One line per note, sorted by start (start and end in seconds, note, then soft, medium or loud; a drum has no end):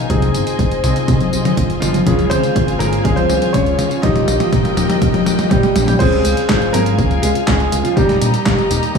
0.00 0.32 D#3 medium
0.00 0.30 D#4 medium
0.00 2.03 G#5 medium
0.10 0.30 C2 loud
0.10 0.81 C4 medium
0.10 0.81 D#4 medium
0.10 5.96 F4 medium
0.10 0.81 F4 medium
0.10 0.81 G#4 loud
0.10 2.05 C5 medium
0.10 2.05 D#5 medium
0.10 kick loud
0.10 closed hi-hat medium
0.10 mid tom medium
0.10 tambourine soft
0.10 high conga medium
0.22 closed hi-hat soft
0.22 tambourine soft
0.34 0.45 G1 medium
0.34 closed hi-hat medium
0.34 tambourine medium
0.47 closed hi-hat soft
0.47 tambourine soft
0.59 0.69 C2 medium
0.59 kick loud
0.59 closed hi-hat medium
0.59 tambourine soft
0.71 closed hi-hat soft
0.71 tambourine soft
0.84 0.94 C2 medium
0.84 2.04 C4 medium
0.84 2.04 D#4 medium
0.84 2.04 F4 medium
0.84 2.04 G#4 medium
0.84 closed hi-hat medium
0.84 mid tom medium
0.84 tambourine medium
0.96 closed hi-hat soft
0.96 tambourine soft
1.08 1.18 C2 medium
1.08 kick loud
1.08 closed hi-hat medium
1.08 mid tom medium
1.08 tambourine soft
1.21 closed hi-hat soft
1.21 tambourine soft
1.21 high conga medium
1.33 1.43 C2 medium
1.33 tambourine medium
1.45 closed hi-hat soft
1.45 mid tom medium
1.45 tambourine soft
1.45 high conga medium
1.57 1.67 G1 medium
1.57 kick loud
1.57 closed hi-hat medium
1.57 tambourine soft
1.70 closed hi-hat soft
1.70 tambourine soft
1.80 2.02 G1 medium
1.80 2.28 F3 medium
1.80 2.32 F4 medium
1.80 closed hi-hat medium
1.80 mid tom medium
1.80 tambourine medium
1.94 closed hi-hat soft
1.94 tambourine soft
1.94 high conga medium
2.06 2.27 C#2 loud
2.06 2.77 C#3 medium
2.06 2.77 G#3 medium
2.06 2.77 F4 medium
2.06 2.77 G#4 loud
2.06 4.01 G#4 medium
2.06 4.01 F5 medium
2.06 4.01 G#5 medium
2.06 kick loud
2.06 closed hi-hat medium
2.06 mid tom medium
2.06 tambourine soft
2.06 high conga medium
2.19 closed hi-hat soft
2.19 tambourine soft
2.30 2.41 C#2 medium
2.30 2.77 C4 medium
2.30 2.81 C5 loud
2.30 closed hi-hat medium
2.30 mid tom medium
2.30 tambourine medium
2.44 closed hi-hat soft
2.44 tambourine soft
2.56 2.76 G#1 medium
2.56 kick loud
2.56 closed hi-hat medium
2.56 mid tom medium
2.56 tambourine soft
2.68 closed hi-hat soft
2.68 tambourine soft
2.79 3.00 G#1 loud
2.79 4.00 C#3 medium
2.79 4.00 G#3 medium
2.79 3.04 A#3 medium
2.79 4.00 F4 medium
2.79 4.00 G#4 medium
2.79 3.05 A#4 medium
2.79 closed hi-hat medium
2.79 mid tom medium
2.79 tambourine medium
2.93 closed hi-hat soft
2.93 tambourine soft
3.04 3.25 C#2 medium
3.04 3.17 G#3 medium
3.04 3.17 G#4 loud
3.04 kick loud
3.04 closed hi-hat medium
3.04 mid tom medium
3.04 tambourine soft
3.16 3.52 C4 medium
3.16 3.55 C5 loud
3.16 closed hi-hat soft
3.16 tambourine soft
3.16 high conga medium
3.30 3.40 C#2 medium
3.30 mid tom medium
3.30 tambourine medium
3.42 closed hi-hat soft
3.42 tambourine soft
3.42 high conga medium
3.53 3.74 C#2 medium
3.53 4.00 C#4 medium
3.53 4.04 C#5 loud
3.53 kick loud
3.53 closed hi-hat medium
3.53 mid tom medium
3.53 tambourine soft
3.66 closed hi-hat soft
3.66 tambourine soft
3.79 3.89 C#2 medium
3.79 closed hi-hat medium
3.79 mid tom medium
3.79 tambourine medium
3.91 closed hi-hat soft
3.91 tambourine soft
4.02 4.24 D#1 medium
4.02 4.74 A#3 loud
4.02 4.74 D#4 medium
4.02 5.47 D#4 medium
4.02 4.74 F4 medium
4.02 4.74 G4 loud
4.02 5.98 A#4 medium
4.02 5.46 D#5 loud
4.02 5.98 D#5 medium
4.02 5.98 G5 medium
4.02 kick loud
4.02 closed hi-hat medium
4.02 mid tom medium
4.02 tambourine soft
4.02 high conga medium
4.16 closed hi-hat soft
4.16 mid tom medium
4.16 tambourine soft
4.28 4.38 A#1 medium
4.28 closed hi-hat medium
4.28 mid tom medium
4.28 tambourine medium
4.40 closed hi-hat soft
4.40 mid tom medium
4.40 tambourine soft
4.53 4.63 D#1 medium
4.53 kick loud
4.53 closed hi-hat medium
4.53 mid tom medium
4.53 tambourine soft
4.65 closed hi-hat soft
4.65 mid tom medium
4.65 tambourine soft
4.77 4.87 D#1 medium
4.77 5.97 A#3 medium
4.77 5.97 D#4 medium
4.77 5.97 F4 medium
4.77 5.97 G4 medium
4.77 closed hi-hat medium
4.77 mid tom medium
4.77 tambourine medium
4.90 closed hi-hat soft
4.90 mid tom medium
4.90 tambourine soft
5.02 5.12 D#1 medium
5.02 kick loud
5.02 closed hi-hat medium
5.02 mid tom loud
5.02 tambourine soft
5.14 closed hi-hat soft
5.14 mid tom medium
5.14 tambourine soft
5.14 high conga medium
5.26 5.36 D#1 loud
5.26 mid tom loud
5.26 tambourine medium
5.39 closed hi-hat soft
5.39 mid tom medium
5.39 tambourine soft
5.39 high conga medium
5.49 5.61 A#1 medium
5.49 5.86 G3 medium
5.49 5.85 G4 medium
5.49 kick loud
5.49 closed hi-hat medium
5.49 mid tom loud
5.49 tambourine soft
5.63 closed hi-hat soft
5.63 mid tom medium
5.63 tambourine soft
5.75 5.96 A#1 loud
5.75 closed hi-hat medium
5.75 mid tom loud
5.75 tambourine medium
5.87 5.94 G3 medium
5.87 5.92 G4 medium
5.87 closed hi-hat soft
5.87 mid tom medium
5.87 tambourine soft
5.87 high conga medium
5.99 6.20 C#2 loud
5.99 6.71 C#3 medium
5.99 6.71 G#3 loud
5.99 6.70 C4 medium
5.99 6.71 F4 medium
5.99 7.95 F4 medium
5.99 6.71 G#4 loud
5.99 7.95 G#4 medium
5.99 6.76 C5 loud
5.99 7.95 F5 medium
5.99 7.95 G#5 medium
5.99 kick loud
5.99 closed hi-hat medium
5.99 tambourine soft
5.99 crash loud
6.13 closed hi-hat soft
6.13 tambourine soft
6.25 6.35 C#2 medium
6.25 closed hi-hat loud
6.25 tambourine medium
6.37 closed hi-hat medium
6.37 tambourine soft
6.49 6.70 G#1 medium
6.49 kick loud
6.49 snare loud
6.49 clap medium
6.49 closed hi-hat medium
6.49 tambourine soft
6.62 closed hi-hat soft
6.62 tambourine soft
6.73 6.94 G#1 loud
6.73 7.94 G#3 medium
6.73 7.20 A#3 medium
6.73 7.94 C#4 medium
6.73 7.94 F4 medium
6.73 7.94 G#4 medium
6.73 7.19 A#4 loud
6.73 closed hi-hat loud
6.73 tambourine medium
6.73 high conga medium
6.86 closed hi-hat medium
6.86 tambourine soft
6.98 7.19 C#2 medium
6.98 kick loud
6.98 closed hi-hat medium
6.98 tambourine soft
6.98 high conga medium
7.11 closed hi-hat soft
7.11 tambourine soft
7.22 7.33 C#2 medium
7.22 7.30 G#3 medium
7.22 7.28 G#4 medium
7.22 closed hi-hat loud
7.22 tambourine medium
7.35 closed hi-hat medium
7.35 tambourine soft
7.47 7.68 C#2 medium
7.47 7.83 G#3 medium
7.47 7.85 G#4 medium
7.47 kick loud
7.47 snare loud
7.47 clap loud
7.47 closed hi-hat medium
7.47 tambourine soft
7.60 closed hi-hat soft
7.60 tambourine soft
7.72 7.82 C#2 medium
7.72 closed hi-hat loud
7.72 tambourine medium
7.83 7.97 F3 medium
7.83 7.97 F4 medium
7.83 closed hi-hat medium
7.83 tambourine soft
7.95 8.17 D#1 loud
7.95 8.68 G3 loud
7.95 8.92 G3 medium
7.95 8.68 A#3 medium
7.95 8.68 D#4 medium
7.95 8.90 G4 medium
7.95 8.68 G4 loud
7.95 8.98 G4 medium
7.95 8.98 A#4 medium
7.95 8.98 D#5 medium
7.95 8.98 A#5 medium
7.95 kick loud
7.95 closed hi-hat medium
7.95 tambourine soft
8.09 snare soft
8.09 closed hi-hat soft
8.09 tambourine soft
8.21 8.32 A#1 medium
8.21 closed hi-hat loud
8.21 tambourine medium
8.34 closed hi-hat medium
8.34 tambourine soft
8.46 8.56 D#1 medium
8.46 kick loud
8.46 snare loud
8.46 clap medium
8.46 closed hi-hat medium
8.46 tambourine soft
8.59 closed hi-hat soft
8.59 tambourine soft
8.70 8.81 D#1 medium
8.70 8.98 G3 medium
8.70 8.98 A#3 medium
8.70 8.98 D#4 medium
8.70 8.98 G4 medium
8.70 closed hi-hat medium
8.70 tambourine medium
8.83 closed hi-hat medium
8.83 tambourine soft
8.95 kick loud